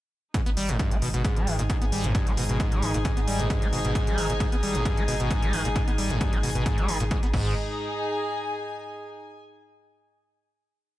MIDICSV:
0, 0, Header, 1, 6, 480
1, 0, Start_track
1, 0, Key_signature, 5, "minor"
1, 0, Tempo, 451128
1, 366, Time_signature, 4, 2, 24, 8
1, 11685, End_track
2, 0, Start_track
2, 0, Title_t, "String section"
2, 0, Program_c, 0, 48
2, 365, Note_on_c, 0, 63, 77
2, 1103, Note_on_c, 0, 68, 73
2, 1680, Note_on_c, 0, 80, 74
2, 7792, Note_off_c, 0, 63, 0
2, 7805, Note_off_c, 0, 68, 0
2, 7805, Note_off_c, 0, 80, 0
2, 7805, Note_on_c, 0, 63, 81
2, 7881, Note_on_c, 0, 68, 79
2, 8194, Note_on_c, 0, 80, 82
2, 9683, Note_off_c, 0, 63, 0
2, 9683, Note_off_c, 0, 68, 0
2, 9922, Note_off_c, 0, 80, 0
2, 11685, End_track
3, 0, Start_track
3, 0, Title_t, "Acid bass"
3, 0, Program_c, 1, 38
3, 365, Note_on_c, 1, 44, 94
3, 435, Note_off_c, 1, 44, 0
3, 492, Note_on_c, 1, 59, 75
3, 530, Note_off_c, 1, 59, 0
3, 606, Note_on_c, 1, 55, 77
3, 732, Note_on_c, 1, 44, 98
3, 748, Note_off_c, 1, 55, 0
3, 826, Note_off_c, 1, 44, 0
3, 845, Note_on_c, 1, 43, 98
3, 972, Note_on_c, 1, 59, 77
3, 988, Note_off_c, 1, 43, 0
3, 1035, Note_off_c, 1, 59, 0
3, 1085, Note_on_c, 1, 47, 97
3, 1155, Note_off_c, 1, 47, 0
3, 1212, Note_on_c, 1, 47, 98
3, 1305, Note_off_c, 1, 47, 0
3, 1325, Note_on_c, 1, 44, 101
3, 1452, Note_on_c, 1, 56, 101
3, 1468, Note_off_c, 1, 44, 0
3, 1566, Note_on_c, 1, 51, 76
3, 1582, Note_off_c, 1, 56, 0
3, 1670, Note_off_c, 1, 51, 0
3, 1692, Note_on_c, 1, 46, 101
3, 1730, Note_off_c, 1, 46, 0
3, 1805, Note_on_c, 1, 44, 101
3, 1875, Note_off_c, 1, 44, 0
3, 1932, Note_on_c, 1, 59, 77
3, 1970, Note_off_c, 1, 59, 0
3, 2046, Note_on_c, 1, 55, 76
3, 2172, Note_on_c, 1, 44, 101
3, 2188, Note_off_c, 1, 55, 0
3, 2266, Note_off_c, 1, 44, 0
3, 2287, Note_on_c, 1, 43, 94
3, 2413, Note_on_c, 1, 59, 74
3, 2429, Note_off_c, 1, 43, 0
3, 2475, Note_off_c, 1, 59, 0
3, 2526, Note_on_c, 1, 47, 104
3, 2595, Note_off_c, 1, 47, 0
3, 2652, Note_on_c, 1, 47, 99
3, 2745, Note_off_c, 1, 47, 0
3, 2765, Note_on_c, 1, 44, 102
3, 2892, Note_on_c, 1, 56, 99
3, 2907, Note_off_c, 1, 44, 0
3, 3005, Note_on_c, 1, 51, 76
3, 3021, Note_off_c, 1, 56, 0
3, 3110, Note_off_c, 1, 51, 0
3, 3132, Note_on_c, 1, 46, 101
3, 3169, Note_off_c, 1, 46, 0
3, 3245, Note_on_c, 1, 44, 102
3, 3315, Note_off_c, 1, 44, 0
3, 3372, Note_on_c, 1, 59, 77
3, 3409, Note_off_c, 1, 59, 0
3, 3485, Note_on_c, 1, 55, 75
3, 3612, Note_on_c, 1, 44, 101
3, 3628, Note_off_c, 1, 55, 0
3, 3705, Note_off_c, 1, 44, 0
3, 3725, Note_on_c, 1, 43, 100
3, 3853, Note_on_c, 1, 59, 78
3, 3868, Note_off_c, 1, 43, 0
3, 3915, Note_off_c, 1, 59, 0
3, 3966, Note_on_c, 1, 47, 101
3, 4035, Note_off_c, 1, 47, 0
3, 4092, Note_on_c, 1, 47, 99
3, 4186, Note_off_c, 1, 47, 0
3, 4205, Note_on_c, 1, 44, 95
3, 4332, Note_on_c, 1, 56, 102
3, 4348, Note_off_c, 1, 44, 0
3, 4445, Note_on_c, 1, 51, 75
3, 4460, Note_off_c, 1, 56, 0
3, 4550, Note_off_c, 1, 51, 0
3, 4572, Note_on_c, 1, 46, 100
3, 4609, Note_off_c, 1, 46, 0
3, 4685, Note_on_c, 1, 44, 102
3, 4755, Note_off_c, 1, 44, 0
3, 4812, Note_on_c, 1, 59, 78
3, 4849, Note_off_c, 1, 59, 0
3, 4925, Note_on_c, 1, 55, 75
3, 5052, Note_on_c, 1, 44, 103
3, 5068, Note_off_c, 1, 55, 0
3, 5145, Note_off_c, 1, 44, 0
3, 5165, Note_on_c, 1, 43, 102
3, 5293, Note_on_c, 1, 59, 78
3, 5309, Note_off_c, 1, 43, 0
3, 5355, Note_off_c, 1, 59, 0
3, 5406, Note_on_c, 1, 47, 101
3, 5475, Note_off_c, 1, 47, 0
3, 5532, Note_on_c, 1, 47, 99
3, 5626, Note_off_c, 1, 47, 0
3, 5645, Note_on_c, 1, 44, 102
3, 5772, Note_on_c, 1, 56, 100
3, 5788, Note_off_c, 1, 44, 0
3, 5886, Note_on_c, 1, 51, 78
3, 5901, Note_off_c, 1, 56, 0
3, 5990, Note_off_c, 1, 51, 0
3, 6012, Note_on_c, 1, 46, 104
3, 6049, Note_off_c, 1, 46, 0
3, 6126, Note_on_c, 1, 44, 98
3, 6195, Note_off_c, 1, 44, 0
3, 6252, Note_on_c, 1, 59, 77
3, 6290, Note_off_c, 1, 59, 0
3, 6366, Note_on_c, 1, 55, 79
3, 6492, Note_on_c, 1, 44, 101
3, 6508, Note_off_c, 1, 55, 0
3, 6586, Note_off_c, 1, 44, 0
3, 6605, Note_on_c, 1, 43, 99
3, 6732, Note_on_c, 1, 59, 78
3, 6748, Note_off_c, 1, 43, 0
3, 6795, Note_off_c, 1, 59, 0
3, 6845, Note_on_c, 1, 47, 99
3, 6915, Note_off_c, 1, 47, 0
3, 6972, Note_on_c, 1, 47, 101
3, 7066, Note_off_c, 1, 47, 0
3, 7085, Note_on_c, 1, 44, 105
3, 7212, Note_on_c, 1, 56, 105
3, 7228, Note_off_c, 1, 44, 0
3, 7326, Note_on_c, 1, 51, 78
3, 7342, Note_off_c, 1, 56, 0
3, 7430, Note_off_c, 1, 51, 0
3, 7452, Note_on_c, 1, 46, 104
3, 7490, Note_off_c, 1, 46, 0
3, 7566, Note_on_c, 1, 44, 101
3, 7636, Note_off_c, 1, 44, 0
3, 7693, Note_on_c, 1, 59, 80
3, 7730, Note_off_c, 1, 59, 0
3, 7807, Note_on_c, 1, 44, 93
3, 8029, Note_off_c, 1, 44, 0
3, 11685, End_track
4, 0, Start_track
4, 0, Title_t, "Synth drone"
4, 0, Program_c, 2, 95
4, 365, Note_on_c, 2, 44, 73
4, 8096, Note_off_c, 2, 44, 0
4, 11685, End_track
5, 0, Start_track
5, 0, Title_t, "Sub bass"
5, 0, Program_c, 3, 38
5, 492, Note_on_c, 3, 32, 76
5, 599, Note_off_c, 3, 32, 0
5, 605, Note_on_c, 3, 32, 97
5, 726, Note_off_c, 3, 32, 0
5, 732, Note_on_c, 3, 32, 78
5, 843, Note_off_c, 3, 32, 0
5, 972, Note_on_c, 3, 32, 79
5, 1079, Note_off_c, 3, 32, 0
5, 1085, Note_on_c, 3, 32, 100
5, 1205, Note_off_c, 3, 32, 0
5, 1212, Note_on_c, 3, 32, 85
5, 1323, Note_off_c, 3, 32, 0
5, 1452, Note_on_c, 3, 32, 75
5, 1559, Note_off_c, 3, 32, 0
5, 1565, Note_on_c, 3, 32, 97
5, 1685, Note_off_c, 3, 32, 0
5, 1692, Note_on_c, 3, 32, 80
5, 1803, Note_off_c, 3, 32, 0
5, 1932, Note_on_c, 3, 32, 76
5, 2039, Note_off_c, 3, 32, 0
5, 2045, Note_on_c, 3, 32, 99
5, 2166, Note_off_c, 3, 32, 0
5, 2173, Note_on_c, 3, 32, 79
5, 2283, Note_off_c, 3, 32, 0
5, 2412, Note_on_c, 3, 32, 79
5, 2519, Note_off_c, 3, 32, 0
5, 2525, Note_on_c, 3, 32, 99
5, 2646, Note_off_c, 3, 32, 0
5, 2652, Note_on_c, 3, 32, 83
5, 2763, Note_off_c, 3, 32, 0
5, 2892, Note_on_c, 3, 32, 80
5, 2999, Note_off_c, 3, 32, 0
5, 3005, Note_on_c, 3, 32, 102
5, 3126, Note_off_c, 3, 32, 0
5, 3132, Note_on_c, 3, 32, 84
5, 3243, Note_off_c, 3, 32, 0
5, 3372, Note_on_c, 3, 32, 78
5, 3479, Note_off_c, 3, 32, 0
5, 3485, Note_on_c, 3, 32, 99
5, 3606, Note_off_c, 3, 32, 0
5, 3612, Note_on_c, 3, 32, 80
5, 3723, Note_off_c, 3, 32, 0
5, 3852, Note_on_c, 3, 32, 76
5, 3959, Note_off_c, 3, 32, 0
5, 3965, Note_on_c, 3, 32, 98
5, 4085, Note_off_c, 3, 32, 0
5, 4092, Note_on_c, 3, 32, 80
5, 4203, Note_off_c, 3, 32, 0
5, 4332, Note_on_c, 3, 32, 79
5, 4439, Note_off_c, 3, 32, 0
5, 4445, Note_on_c, 3, 32, 100
5, 4565, Note_off_c, 3, 32, 0
5, 4571, Note_on_c, 3, 32, 80
5, 4683, Note_off_c, 3, 32, 0
5, 4812, Note_on_c, 3, 32, 76
5, 4919, Note_off_c, 3, 32, 0
5, 4925, Note_on_c, 3, 32, 100
5, 5046, Note_off_c, 3, 32, 0
5, 5052, Note_on_c, 3, 32, 84
5, 5163, Note_off_c, 3, 32, 0
5, 5292, Note_on_c, 3, 32, 74
5, 5399, Note_off_c, 3, 32, 0
5, 5406, Note_on_c, 3, 32, 96
5, 5526, Note_off_c, 3, 32, 0
5, 5533, Note_on_c, 3, 32, 82
5, 5643, Note_off_c, 3, 32, 0
5, 5772, Note_on_c, 3, 32, 77
5, 5879, Note_off_c, 3, 32, 0
5, 5885, Note_on_c, 3, 32, 103
5, 6005, Note_off_c, 3, 32, 0
5, 6012, Note_on_c, 3, 32, 80
5, 6123, Note_off_c, 3, 32, 0
5, 6252, Note_on_c, 3, 32, 79
5, 6358, Note_off_c, 3, 32, 0
5, 6365, Note_on_c, 3, 32, 106
5, 6485, Note_off_c, 3, 32, 0
5, 6492, Note_on_c, 3, 32, 80
5, 6603, Note_off_c, 3, 32, 0
5, 6732, Note_on_c, 3, 32, 78
5, 6838, Note_off_c, 3, 32, 0
5, 6845, Note_on_c, 3, 32, 100
5, 6966, Note_off_c, 3, 32, 0
5, 6972, Note_on_c, 3, 32, 85
5, 7083, Note_off_c, 3, 32, 0
5, 7213, Note_on_c, 3, 32, 78
5, 7319, Note_off_c, 3, 32, 0
5, 7326, Note_on_c, 3, 32, 98
5, 7446, Note_off_c, 3, 32, 0
5, 7452, Note_on_c, 3, 32, 83
5, 7563, Note_off_c, 3, 32, 0
5, 7692, Note_on_c, 3, 32, 79
5, 7799, Note_off_c, 3, 32, 0
5, 7805, Note_on_c, 3, 32, 102
5, 8029, Note_off_c, 3, 32, 0
5, 11685, End_track
6, 0, Start_track
6, 0, Title_t, "Drums"
6, 365, Note_on_c, 9, 36, 114
6, 365, Note_on_c, 9, 42, 93
6, 471, Note_off_c, 9, 36, 0
6, 472, Note_off_c, 9, 42, 0
6, 492, Note_on_c, 9, 42, 52
6, 599, Note_off_c, 9, 42, 0
6, 605, Note_on_c, 9, 46, 95
6, 712, Note_off_c, 9, 46, 0
6, 733, Note_on_c, 9, 42, 53
6, 839, Note_off_c, 9, 42, 0
6, 845, Note_on_c, 9, 36, 117
6, 845, Note_on_c, 9, 42, 94
6, 951, Note_off_c, 9, 36, 0
6, 952, Note_off_c, 9, 42, 0
6, 972, Note_on_c, 9, 42, 53
6, 1079, Note_off_c, 9, 42, 0
6, 1086, Note_on_c, 9, 46, 90
6, 1192, Note_off_c, 9, 46, 0
6, 1213, Note_on_c, 9, 42, 55
6, 1319, Note_off_c, 9, 42, 0
6, 1325, Note_on_c, 9, 36, 115
6, 1325, Note_on_c, 9, 42, 93
6, 1431, Note_off_c, 9, 36, 0
6, 1432, Note_off_c, 9, 42, 0
6, 1453, Note_on_c, 9, 42, 52
6, 1559, Note_off_c, 9, 42, 0
6, 1566, Note_on_c, 9, 46, 97
6, 1672, Note_off_c, 9, 46, 0
6, 1692, Note_on_c, 9, 42, 55
6, 1799, Note_off_c, 9, 42, 0
6, 1805, Note_on_c, 9, 36, 114
6, 1805, Note_on_c, 9, 42, 92
6, 1912, Note_off_c, 9, 36, 0
6, 1912, Note_off_c, 9, 42, 0
6, 1932, Note_on_c, 9, 42, 55
6, 2039, Note_off_c, 9, 42, 0
6, 2045, Note_on_c, 9, 46, 90
6, 2152, Note_off_c, 9, 46, 0
6, 2172, Note_on_c, 9, 42, 53
6, 2278, Note_off_c, 9, 42, 0
6, 2285, Note_on_c, 9, 36, 125
6, 2285, Note_on_c, 9, 42, 94
6, 2391, Note_off_c, 9, 36, 0
6, 2392, Note_off_c, 9, 42, 0
6, 2412, Note_on_c, 9, 42, 52
6, 2519, Note_off_c, 9, 42, 0
6, 2526, Note_on_c, 9, 46, 101
6, 2632, Note_off_c, 9, 46, 0
6, 2652, Note_on_c, 9, 42, 52
6, 2759, Note_off_c, 9, 42, 0
6, 2765, Note_on_c, 9, 36, 122
6, 2766, Note_on_c, 9, 42, 92
6, 2872, Note_off_c, 9, 36, 0
6, 2872, Note_off_c, 9, 42, 0
6, 2892, Note_on_c, 9, 42, 54
6, 2999, Note_off_c, 9, 42, 0
6, 3005, Note_on_c, 9, 46, 93
6, 3112, Note_off_c, 9, 46, 0
6, 3132, Note_on_c, 9, 42, 53
6, 3238, Note_off_c, 9, 42, 0
6, 3245, Note_on_c, 9, 36, 118
6, 3245, Note_on_c, 9, 42, 93
6, 3351, Note_off_c, 9, 36, 0
6, 3351, Note_off_c, 9, 42, 0
6, 3372, Note_on_c, 9, 42, 51
6, 3478, Note_off_c, 9, 42, 0
6, 3485, Note_on_c, 9, 46, 107
6, 3592, Note_off_c, 9, 46, 0
6, 3612, Note_on_c, 9, 42, 53
6, 3719, Note_off_c, 9, 42, 0
6, 3725, Note_on_c, 9, 36, 119
6, 3725, Note_on_c, 9, 42, 94
6, 3832, Note_off_c, 9, 36, 0
6, 3832, Note_off_c, 9, 42, 0
6, 3852, Note_on_c, 9, 42, 52
6, 3959, Note_off_c, 9, 42, 0
6, 3966, Note_on_c, 9, 46, 93
6, 4072, Note_off_c, 9, 46, 0
6, 4092, Note_on_c, 9, 42, 58
6, 4199, Note_off_c, 9, 42, 0
6, 4205, Note_on_c, 9, 36, 123
6, 4205, Note_on_c, 9, 42, 94
6, 4311, Note_off_c, 9, 36, 0
6, 4312, Note_off_c, 9, 42, 0
6, 4332, Note_on_c, 9, 42, 53
6, 4439, Note_off_c, 9, 42, 0
6, 4445, Note_on_c, 9, 46, 102
6, 4552, Note_off_c, 9, 46, 0
6, 4572, Note_on_c, 9, 42, 53
6, 4678, Note_off_c, 9, 42, 0
6, 4685, Note_on_c, 9, 36, 124
6, 4685, Note_on_c, 9, 42, 90
6, 4791, Note_off_c, 9, 36, 0
6, 4792, Note_off_c, 9, 42, 0
6, 4812, Note_on_c, 9, 42, 54
6, 4918, Note_off_c, 9, 42, 0
6, 4925, Note_on_c, 9, 46, 96
6, 5032, Note_off_c, 9, 46, 0
6, 5052, Note_on_c, 9, 42, 54
6, 5159, Note_off_c, 9, 42, 0
6, 5165, Note_on_c, 9, 36, 120
6, 5165, Note_on_c, 9, 42, 92
6, 5271, Note_off_c, 9, 36, 0
6, 5272, Note_off_c, 9, 42, 0
6, 5293, Note_on_c, 9, 42, 54
6, 5399, Note_off_c, 9, 42, 0
6, 5405, Note_on_c, 9, 46, 108
6, 5512, Note_off_c, 9, 46, 0
6, 5532, Note_on_c, 9, 42, 54
6, 5639, Note_off_c, 9, 42, 0
6, 5645, Note_on_c, 9, 36, 124
6, 5646, Note_on_c, 9, 42, 94
6, 5751, Note_off_c, 9, 36, 0
6, 5752, Note_off_c, 9, 42, 0
6, 5772, Note_on_c, 9, 42, 54
6, 5878, Note_off_c, 9, 42, 0
6, 5885, Note_on_c, 9, 46, 98
6, 5991, Note_off_c, 9, 46, 0
6, 6012, Note_on_c, 9, 42, 54
6, 6119, Note_off_c, 9, 42, 0
6, 6125, Note_on_c, 9, 36, 126
6, 6125, Note_on_c, 9, 42, 93
6, 6232, Note_off_c, 9, 36, 0
6, 6232, Note_off_c, 9, 42, 0
6, 6252, Note_on_c, 9, 42, 51
6, 6359, Note_off_c, 9, 42, 0
6, 6365, Note_on_c, 9, 46, 103
6, 6472, Note_off_c, 9, 46, 0
6, 6492, Note_on_c, 9, 42, 51
6, 6598, Note_off_c, 9, 42, 0
6, 6605, Note_on_c, 9, 36, 126
6, 6605, Note_on_c, 9, 42, 89
6, 6712, Note_off_c, 9, 36, 0
6, 6712, Note_off_c, 9, 42, 0
6, 6732, Note_on_c, 9, 42, 52
6, 6839, Note_off_c, 9, 42, 0
6, 6846, Note_on_c, 9, 46, 93
6, 6952, Note_off_c, 9, 46, 0
6, 6973, Note_on_c, 9, 42, 51
6, 7079, Note_off_c, 9, 42, 0
6, 7085, Note_on_c, 9, 36, 119
6, 7085, Note_on_c, 9, 42, 91
6, 7192, Note_off_c, 9, 36, 0
6, 7192, Note_off_c, 9, 42, 0
6, 7212, Note_on_c, 9, 42, 52
6, 7319, Note_off_c, 9, 42, 0
6, 7325, Note_on_c, 9, 46, 110
6, 7432, Note_off_c, 9, 46, 0
6, 7452, Note_on_c, 9, 42, 51
6, 7558, Note_off_c, 9, 42, 0
6, 7565, Note_on_c, 9, 36, 120
6, 7565, Note_on_c, 9, 42, 90
6, 7671, Note_off_c, 9, 42, 0
6, 7672, Note_off_c, 9, 36, 0
6, 7692, Note_on_c, 9, 42, 51
6, 7799, Note_off_c, 9, 42, 0
6, 7805, Note_on_c, 9, 36, 115
6, 7805, Note_on_c, 9, 49, 87
6, 7912, Note_off_c, 9, 36, 0
6, 7912, Note_off_c, 9, 49, 0
6, 11685, End_track
0, 0, End_of_file